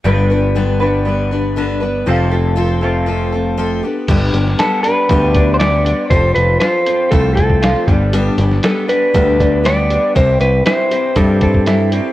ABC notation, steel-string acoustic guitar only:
X:1
M:4/4
L:1/8
Q:1/4=119
K:G
V:1 name="Steel-string acoustic guitar"
[G,,D,G,B,DB] [G,B,DB] [G,,D,G,B,DB] [G,B,DB] [G,B,DB] [G,B,DB] [G,,D,G,B,DB] [G,B,DB] | [=F,C=FA] [CFA] [F,CFA] [CFA] [F,CFA] [CFA] [F,CFA] [G,B,DG] | [G,,D,G,B,DG] [G,B,DG] [G,B,DG] [G,B,DG] [G,,D,G,B,DG] [G,B,DG] [G,B,DG] [G,B,DG] | [=F,C=FA] [CFA] [F,CFA] [CFA] [F,CFA] [CFA] [F,CFA] [G,B,DG] |
[G,,D,G,B,DG] [G,B,DG] [G,B,DG] [G,B,DG] [G,,D,G,B,DG] [G,B,DG] [G,B,DG] [G,B,DG] | [C,G,CEG] [CEG] [G,CEG] [CEG] [C,G,CEG] [CEG] [G,CEG] [CEG] |]